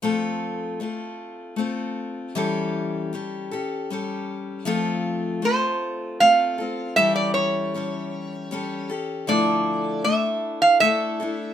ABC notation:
X:1
M:3/4
L:1/16
Q:1/4=78
K:F
V:1 name="Resonator guitar played with a steel bar"
z12 | z12 | z4 c4 f4 | e d ^c8 z2 |
d4 e3 f e4 |]
V:2 name="Steel-string acoustic guitar"
[F,A,CFA]4 [A,CFA]4 [A,CFA]4 | [E,G,^CGA]4 [G,CGA]2 [CGA]2 [G,CGA]4 | [F,A,CFA]4 [A,CFA]4 [A,CFA]2 [CFA]2 | [E,G,^CGA]4 [G,CGA]4 [G,CGA]2 [CGA]2 |
[D,F,A,DEA]4 [A,DEA]4 [A,DEA]2 [A,DEA]2 |]